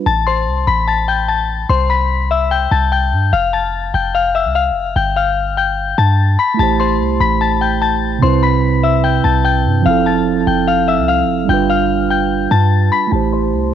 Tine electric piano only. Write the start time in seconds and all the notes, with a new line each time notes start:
6.54 A3 E4
6.60 G4 C5
8.19 C3 C4
8.24 E4 B4
9.82 F3 C4
9.87 E4 A4
11.45 G3 D4
11.50 F4 B4
13.07 A3 E4
13.13 G4 C5